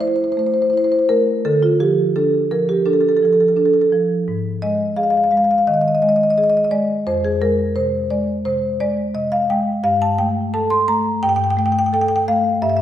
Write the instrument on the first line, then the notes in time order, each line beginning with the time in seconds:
marimba
Already playing: A3
0.01 E4 C5
0.07 C5
0.16 C5
0.24 C5
0.32 C5
0.37 A3 C5
0.47 C5
0.54 C5
0.62 C5
0.70 E4 C5
0.77 C5
0.84 C5
0.92 C5
0.99 C5
1.09 A3 A#4
1.45 D3 A4
1.63 F4
1.80 F3 G4
2.16 D4 A4
2.51 F3 A#4
2.69 G4
2.86 D4 A4
2.93 A4
3.01 A4
3.09 A4
3.17 A4
3.22 F3 A4
3.33 A4
3.40 A4
3.48 A4
3.57 D4 A4
3.65 A4
3.73 A4
3.81 A4
3.92 F3
4.28 G#2
4.62 G#3 D#5
4.96 G#4 F5
5.03 F5
5.10 F5
5.17 F5
5.24 F5
5.31 G#3 F5
5.37 F5
5.44 F5
5.51 F5
5.58 F5
5.67 D#3 D#5
5.74 D#5
5.81 D#5
5.88 D#5
5.95 D#5
6.02 G#3 D#5
6.09 D#5
6.16 D#5
6.23 D#5
6.30 D#5
6.38 G#4 D#5
6.44 D#5
6.50 D#5
6.57 D#5
6.64 D#5
6.71 G#3 D5
7.07 F2 C5
7.25 G#4
7.41 G#3 A#4
7.76 C3 C5
8.10 G#3 D5
8.45 C3 C5
8.80 G#3 D5
9.15 C3 D#5
9.32 F5
9.50 G#3 G5
9.83 G2 F5
10.02 A5
10.18 A3 G5
10.54 A4 A5
10.70 C6
10.88 A3 A#5
11.23 G2 G5
11.29 G5
11.36 G5
11.44 G5
11.51 G5
11.57 A3 G5
11.66 G5
11.72 G5
11.79 G5
11.86 G5
11.93 A4 G5
12.01 G5
12.08 G5
12.16 G5
12.28 A3 F5
12.62 G2 E5
12.70 E5
12.77 E5